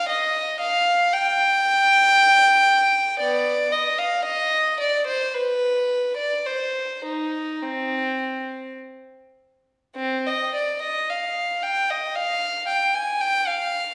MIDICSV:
0, 0, Header, 1, 2, 480
1, 0, Start_track
1, 0, Key_signature, -3, "minor"
1, 0, Tempo, 1034483
1, 44, Time_signature, 3, 2, 24, 8
1, 1484, Tempo, 1073345
1, 2444, Tempo, 1138520
1, 3884, Tempo, 1207243
1, 4364, Tempo, 1138520
1, 4844, Tempo, 1052632
1, 6138, End_track
2, 0, Start_track
2, 0, Title_t, "Violin"
2, 0, Program_c, 0, 40
2, 40, Note_on_c, 0, 75, 78
2, 278, Note_off_c, 0, 75, 0
2, 280, Note_on_c, 0, 77, 80
2, 518, Note_off_c, 0, 77, 0
2, 524, Note_on_c, 0, 79, 90
2, 1482, Note_on_c, 0, 59, 56
2, 1482, Note_on_c, 0, 74, 78
2, 1483, Note_off_c, 0, 79, 0
2, 1702, Note_off_c, 0, 59, 0
2, 1714, Note_off_c, 0, 74, 0
2, 1718, Note_on_c, 0, 75, 72
2, 1835, Note_on_c, 0, 77, 75
2, 1837, Note_off_c, 0, 75, 0
2, 1956, Note_off_c, 0, 77, 0
2, 1956, Note_on_c, 0, 75, 78
2, 2194, Note_off_c, 0, 75, 0
2, 2202, Note_on_c, 0, 74, 68
2, 2320, Note_on_c, 0, 72, 74
2, 2321, Note_off_c, 0, 74, 0
2, 2441, Note_off_c, 0, 72, 0
2, 2442, Note_on_c, 0, 71, 68
2, 2791, Note_on_c, 0, 74, 63
2, 2795, Note_off_c, 0, 71, 0
2, 2912, Note_off_c, 0, 74, 0
2, 2912, Note_on_c, 0, 72, 61
2, 3158, Note_off_c, 0, 72, 0
2, 3161, Note_on_c, 0, 63, 56
2, 3400, Note_off_c, 0, 63, 0
2, 3403, Note_on_c, 0, 60, 57
2, 3884, Note_off_c, 0, 60, 0
2, 4359, Note_on_c, 0, 60, 65
2, 4486, Note_off_c, 0, 60, 0
2, 4489, Note_on_c, 0, 75, 65
2, 4606, Note_on_c, 0, 74, 60
2, 4612, Note_off_c, 0, 75, 0
2, 4722, Note_on_c, 0, 75, 67
2, 4724, Note_off_c, 0, 74, 0
2, 4838, Note_off_c, 0, 75, 0
2, 4840, Note_on_c, 0, 77, 58
2, 5081, Note_on_c, 0, 79, 68
2, 5083, Note_off_c, 0, 77, 0
2, 5202, Note_off_c, 0, 79, 0
2, 5206, Note_on_c, 0, 75, 63
2, 5321, Note_on_c, 0, 77, 69
2, 5324, Note_off_c, 0, 75, 0
2, 5560, Note_off_c, 0, 77, 0
2, 5561, Note_on_c, 0, 79, 65
2, 5678, Note_off_c, 0, 79, 0
2, 5681, Note_on_c, 0, 80, 61
2, 5801, Note_off_c, 0, 80, 0
2, 5802, Note_on_c, 0, 79, 73
2, 5921, Note_on_c, 0, 77, 70
2, 5922, Note_off_c, 0, 79, 0
2, 6138, Note_off_c, 0, 77, 0
2, 6138, End_track
0, 0, End_of_file